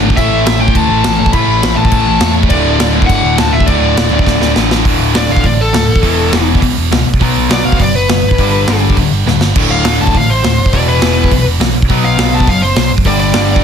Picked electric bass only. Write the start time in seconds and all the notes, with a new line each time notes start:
Already playing: G#1
0.17 A1
0.31 A1
0.46 A1
0.75 D2
0.89 A1
1.05 A1
1.20 A1
1.33 A2
1.48 A1
1.62 A1
1.77 A1
1.92 A1
2.06 A1
2.20 E2
2.50 D1
2.65 D1
2.79 D1
3.09 G1
3.24 D1
3.39 D1
3.52 D1
3.68 D2
3.82 D1
3.96 D1
4.11 D1
4.26 D1
4.40 D1
4.56 A1
4.85 D1
5.00 D1
5.15 D1
5.30 D1
5.44 A1
5.74 D1
5.89 A1
6.03 E1
6.33 E1
6.63 B1
6.78 E1
6.92 C#2
7.06 B1
7.21 B1
7.36 B1
7.50 B1
7.65 B1
7.79 F#1
8.09 F#1
8.24 G1
8.38 G1
8.68 G1
8.97 D1
9.11 G1
9.26 D1
9.41 G1
9.56 D1
9.70 D1
9.85 D1
10.00 D1
10.15 A1
10.44 D1
10.59 F#1
10.73 E1
11.02 E1
11.31 B1
11.45 E1
11.60 B1
11.74 B1
11.89 B1
12.03 B1
12.18 B1
12.33 B1
12.47 F#1
12.76 B1
12.91 G1
13.05 G1
13.34 G1